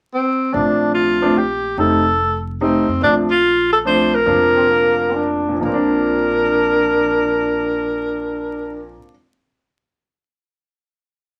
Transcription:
0.14 C4
0.52 A#1 F3 A3 C4 D4
0.95 F4
1.21 F3 A3 C4 D4
1.38 G4
1.78 F1 G3 A3 C4 D#4 A4
2.61 G3 A3 C4 D#4
2.88 F2
3.01 A#1 F3 A3 C4 D4
3.31 F4
3.73 A4
3.85 F3 A3 C4 D4 C5
4.15 A#4
4.25 F1 F3 A#3 C4 D4
4.55 C4
4.70 A#3
5.14 D4
5.49 A#2
5.55 F3
5.61 A#1 A#3 D4
5.65 C4 A#4
5.73 D4

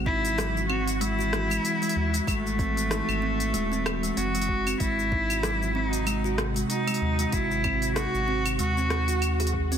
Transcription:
Already playing: G#1 E3 F#4
0.06 D#4 E4, kick
0.25 open hi-hat, shaker
0.38 F#3, cross-stick, open hi-hat, shaker
0.57 shaker
0.69 C4 F#4, claves
0.87 open hi-hat, shaker
0.95 F#4
1.01 G#3 E4, open hi-hat, shaker
1.19 F#4, shaker
1.33 cross-stick, open hi-hat
1.50 G#3, open hi-hat, claves, shaker
1.65 open hi-hat, shaker
1.82 G#3, open hi-hat, shaker
1.89 open hi-hat
1.96 D#2
2.14 G#3, open hi-hat, shaker
2.27 G#1 G#3 A3, kick, open hi-hat, claves, shaker
2.47 shaker
2.59 C4, kick, open hi-hat
2.77 open hi-hat, shaker
2.91 D#4, cross-stick, open hi-hat, shaker
3.08 G#1, claves, shaker
3.22 C4
3.40 open hi-hat, shaker
3.54 D#1 G#3, open hi-hat, shaker
3.72 C4, shaker
3.86 cross-stick, open hi-hat, claves
4.03 G#3, open hi-hat, shaker
4.17 F#1 C4 F#4, open hi-hat, shaker
4.35 G#3, open hi-hat, shaker
4.42 open hi-hat
4.49 kick
4.67 C4, open hi-hat, claves, shaker
4.79 G#1 C3 G#3 E4 F#4, kick, open hi-hat, shaker
4.99 shaker
5.12 D#4, kick
5.30 open hi-hat, claves, shaker
5.43 F#3, cross-stick, open hi-hat, shaker
5.62 shaker
5.75 C4 D#4
5.93 open hi-hat, shaker
6.07 G#3, open hi-hat, claves, shaker
6.24 F#4, shaker
6.38 cross-stick, open hi-hat
6.56 G#3, open hi-hat, shaker
6.70 D#4, open hi-hat, shaker
6.87 G#3, open hi-hat, claves, shaker
6.94 open hi-hat
7.01 D#2
7.19 G#3, open hi-hat, shaker
7.32 G#1 G#3 E4, kick, open hi-hat, shaker
7.51 shaker
7.64 C4, kick, open hi-hat, claves
7.82 open hi-hat, shaker
7.96 F#4, cross-stick, open hi-hat, shaker
8.14 G#1, shaker
8.28 C4
8.46 open hi-hat, claves, shaker
8.59 D#2 G#3 F#4, open hi-hat, shaker
8.77 C4, shaker
8.90 cross-stick, open hi-hat
9.08 F#4, open hi-hat, shaker
9.22 open hi-hat, claves, shaker
9.40 G#4, open hi-hat, shaker
9.47 open hi-hat
9.54 kick
9.72 C4, open hi-hat, shaker

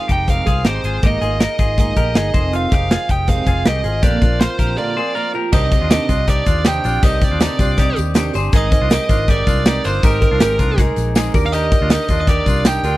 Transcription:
Already playing: D#3 G#3 C4 G#4 F5
0.08 F1 D#4 G4 G5, kick, closed hi-hat
0.27 F2 C3 D#3 G#3 C4 G#4 F5, kick, closed hi-hat
0.46 C2 D#3 G#3 C4 F4 G#4, kick, closed hi-hat
0.64 G#1 D#3 G#3 C4 D#4 G4 G#4 C5, snare, closed hi-hat
0.84 G#1 F4 G#4, closed hi-hat
1.02 G#1 G#3 A#3 D#4 G4 G#4, kick, closed hi-hat
1.07 D#5
1.21 G#1 A#3 D#4 F4 G#4, closed hi-hat
1.40 D#4 A#4 D#5, snare, closed hi-hat
1.59 G#1 F4 G#4, kick, closed hi-hat
1.78 G#3 A#3 D#4 G#4 D#5, kick, closed hi-hat
1.96 A#1 A#3 D#4 G4 G#4 A#4, kick, closed hi-hat
2.14 G1 G#3 A#3 D#4 G#4 D#5, snare, closed hi-hat
2.33 F1 F2 C3 D#3 G#3 C4 G#4 C5, kick, closed hi-hat
2.53 C4 F4 F5, closed hi-hat
2.71 F1 D#3 G#3 C4 D#4 G4 G#4 F5, kick, closed hi-hat
2.91 F4 G#4, snare, closed hi-hat
3.09 F1 D#4 G4 G5, kick, closed hi-hat
3.27 F2 C3 D#3 G#3 C4 G#4 F5, kick, closed hi-hat
3.46 F1 D#3 G#3 C4 F4 G#4, kick, closed hi-hat
3.66 C2 D#3 G#3 C4 D#4 G4 G#4 D#5, snare, closed hi-hat
3.84 G#1 D#3 G#3 C4 F4 G#4, closed hi-hat
4.02 A#1 A#2 D3 F3 A#3 C4 D4 F4 G4 D5, kick, closed hi-hat
4.21 A#1 F3 A#3 C4 D4 F4, kick, closed hi-hat
4.40 F4 C5, snare, closed hi-hat
4.59 A#1 F3 A#3 C4 F4 G4 A#4, kick, closed hi-hat
4.77 A#2 D3 F3 A#3 C4 F4 D5
4.97 F3 A#3 C4 F4 G#4 C5
5.15 F3 A#3 C4 F4 A#4
5.34 F3 A#3 C4 F4 G4 A#4
5.53 C2 C3 D#3 C4 D4 D#4 G4 D#5 D#6, kick, crash, tambourine
5.71 C4 D4 G4, kick, closed hi-hat, tambourine
5.82 D#2 D4 F4
5.90 C3 D#3 C4 D4 D#4 G4 D#5 D#6, snare, closed hi-hat, tambourine
6.09 C2 C4 D4 F4 G4, kick, closed hi-hat, tambourine
6.27 D#3 C4 D4 D#4 G4 D5 D6, kick, closed hi-hat
6.46 D#2 D4 F4, kick, closed hi-hat, tambourine
6.65 C3 D#3 C4 D4 D#4 G4 G5 G6, snare, closed hi-hat, tambourine
6.84 A#1 C4 D4 F4 G4, closed hi-hat, tambourine
7.03 C2 C3 D#3 C4 D4 D#4 G4 D#5 D#6, kick, closed hi-hat, tambourine
7.21 C4 D4 G4 D5 D6, kick, closed hi-hat, tambourine
7.31 D#2 D4 F4
7.40 C3 D#3 C4 D4 D#4 G4, snare, closed hi-hat, tambourine
7.59 C2 C4 D4 F4 G4, kick, closed hi-hat, tambourine
7.77 D#3 C4 D4 D#4 G4, kick, snare, closed hi-hat, tambourine
7.96 D#2, closed hi-hat, tambourine
8.14 C3 D#3 C4 D4 D#4 G4, snare, closed hi-hat, tambourine
8.33 G1 C4 D4 G4 G#4 C5, closed hi-hat, tambourine
8.52 G#1 G#3 C4 D#4 G#4 A#4 D#5, kick, closed hi-hat, tambourine
8.57 D#6
8.71 C4 D#4 A#4, kick, closed hi-hat, tambourine
8.81 C2 D4 F4
8.90 G#3 C4 D#4 G4 A#4 D#5, snare, closed hi-hat, tambourine
8.94 D#6
9.09 G#1 C4 D4 D#4 F4 A#4, kick, closed hi-hat, tambourine
9.28 G#3 C4 D#4 G4 A#4 D5 D6, kick, closed hi-hat, tambourine
9.47 C2 D4 F4, kick, closed hi-hat, tambourine
9.66 G#3 C4 D#4 G4 A#4, snare, closed hi-hat, tambourine
9.84 G1 C4 D4 D#4 F4 A#4 C5 C6, closed hi-hat, tambourine
10.03 G#1 G#3 C4 D#4 G4 A#4 A#5, kick, closed hi-hat, tambourine
10.21 C4 D#4 A#4, kick, closed hi-hat
10.31 C2 D4 F4
10.40 G#1 G#3 C4 D#4 G4 A#4, snare, closed hi-hat, tambourine
10.59 C2 C4 D4 D#4 F4 A#4, kick, closed hi-hat, tambourine
10.78 G#3 C4 D#4 G#4 A#4, kick, snare, closed hi-hat
10.96 A#1, closed hi-hat, tambourine
11.15 G#3 C4 D#4 G#4 A#4, snare, closed hi-hat, tambourine
11.34 D#2 D4 G4 A#4 D5, kick, open hi-hat, tambourine
11.46 F5 F6
11.52 D#3 D4 D#4 G4 A#4 D#5 D#6, closed hi-hat, tambourine
11.72 D4 G4 A#4, kick, closed hi-hat, tambourine
11.81 D2 D4 F4
11.90 D#3 D4 D#4 G4 A#4 D#5 D#6, snare, closed hi-hat, tambourine
12.08 D#2 D4 F4 G4 A#4, kick, closed hi-hat, tambourine
12.21 D#5 D#6
12.27 D#3 D4 D#4 G4 A#4 D5 D6, kick, snare, closed hi-hat
12.46 C2 D4 F4, kick, closed hi-hat, tambourine
12.65 D#3 D4 D#4 G4 A#4 G5 G6, snare, closed hi-hat, tambourine
12.83 D2 D4 F4 G4 A#4, closed hi-hat, tambourine

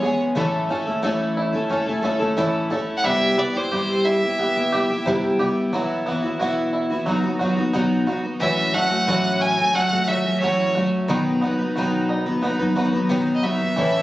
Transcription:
Already playing: G#3 B3 C#4 C#5
0.02 G#3 B3 C#4 G#4
0.35 A2 E3 A3 C#4 E4 A4
0.69 A3 C#4 E4 A4
0.86 A3 C#4 E4 A4
1.03 A2 E3 A3 C#4 E4 A4
1.37 E4
1.53 A3 C#4 E4 A4
1.69 A3 C#4 E4 A4
1.86 A3 C#4 E4 A4
2.02 A3 C#4 E4 A4
2.19 A3 C#4 E4 A4
2.37 A2 E3 A3 C#4 E4 A4
2.70 A3 C#4 E4 A4
2.97 F#5
3.04 C3 G3 B3 E4 G4 E5
3.37 G3 B3 E4 G4 D5
3.55 B3 E4 G4 C5
3.71 C3 G3 E4 G4
4.05 E4 E5
4.22 B3 E4 G4
4.38 G3 B3 E4 G4
4.55 B3 E4 G4
4.72 G3 B3 E4 G4
4.90 B3 E4 G4
5.06 C3 G3 B3 E4 G4
5.39 G3 B3 E4 G4
5.73 B2 E3 F#3 B3 E4 F#4
6.06 E3 B3 E4 F#4
6.22 B3 E4 F#4
6.39 B2 E3 B3 E4 F#4
6.73 E4
6.90 B3 E4 F#4
7.06 F#3 B3 D#4 F#4
7.24 B3 D#4 F#4
7.39 F#3 B3 D#4 F#4
7.43 F#4
7.57 B3 D#4 F#4
7.73 B2 F#3 B3 D#4 F#4
8.07 F#3 B3 D#4 F#4
8.23 B3 D#4 F#4
8.40 A2 E3 F#3 A3 C#4 F#4 E5
8.73 F#3 A3 C#4 F#4 F#5
8.89 F#3 A3 C#4 F#4
9.07 A2 E3 F#3 A3 C#4 F#4
9.40 C#4 G#5
9.57 F#3 A3 C#4 F#4
9.73 F#3 A3 C#4 F#4 F#5
9.90 F#3 A3 C#4 F#4
10.08 F#3 A3 C#4 F#4 E5
10.25 F#3 A3 C#4 F#4
10.40 A2 E3 F#3 A3 C#4 F#4 C#5
10.75 F#3 A3 C#4 F#4
11.08 B2 D#3 F#3 B3 D#4 B4
11.41 F#3 B3 D#4 B4
11.59 F#3 B3 D#4 B4
11.76 B2 D#3 F#3 B3 D#4 F#4 B4
12.09 D#4
12.26 F#3 B3 D#4 B4
12.42 F#3 B3 D#4 B4
12.59 F#3 B3 D#4 B4
12.75 F#3 B3 D#4 F#4 B4
12.93 F#3 B3 D#4 B4
13.09 B2 D#3 F#3 B3 D#4 B4
13.35 D#5
13.43 F#3 B3 D#4 F#4 B4 E5
13.59 F#3 B3 D#4 B4
13.76 A2 E3 A3 C#4 E4 A4

